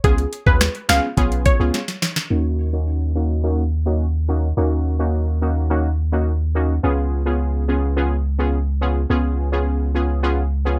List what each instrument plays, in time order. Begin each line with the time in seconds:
0.04 sub bass C#2, synth stab B3 C#4 F4 G#4, synth pluck G#4, kick, closed hi-hat
0.18 closed hi-hat
0.33 closed hi-hat
0.46 sub bass D#2, synth stab B3 C#4 F4 G#4, synth pluck B4, kick
0.61 finger snap, cross-stick, snare, closed hi-hat
0.75 closed hi-hat
0.89 sub bass C#2, synth stab B3 C#4 F4 G#4, synth pluck F5, finger snap, snare, closed hi-hat
1.17 sub bass B1, synth stab B3 C#4 F4 G#4, kick, closed hi-hat
1.32 closed hi-hat
1.46 synth pluck C#5, kick, closed hi-hat
1.60 sub bass C#2, synth stab B3 C#4 F4 G#4
1.74 snare, closed hi-hat
1.88 snare, closed hi-hat
2.02 snare, closed hi-hat
2.16 snare
2.30 sub bass D#2, synth stab A#3 C#4 D#4 F#4
2.73 synth stab A#3 C#4 D#4 F#4
3.15 synth stab A#3 C#4 D#4 F#4
3.43 synth stab A#3 C#4 D#4 F#4
3.86 synth stab A#3 C#4 D#4 F#4
4.28 synth stab A#3 C#4 D#4 F#4
4.57 sub bass D#2, synth stab A#3 C#4 D#4 F#4
4.99 synth stab A#3 C#4 D#4 F#4
5.42 synth stab A#3 C#4 D#4 F#4
5.70 synth stab A#3 C#4 D#4 F#4
6.12 synth stab A#3 C#4 D#4 F#4
6.55 synth stab A#3 C#4 D#4 F#4
6.83 sub bass C#2, synth stab B3 C#4 F4 G#4
7.26 synth stab B3 C#4 F4 G#4
7.68 synth stab B3 C#4 F4 G#4
7.96 synth stab B3 C#4 F4 G#4
8.39 synth stab B3 C#4 F4 G#4
8.81 synth stab B3 C#4 F4 G#4
9.10 sub bass C#2, synth stab B3 C#4 F4 G#4
9.52 synth stab B3 C#4 F4 G#4
9.95 synth stab B3 C#4 F4 G#4
10.23 synth stab B3 C#4 F4 G#4
10.65 synth stab B3 C#4 F4 G#4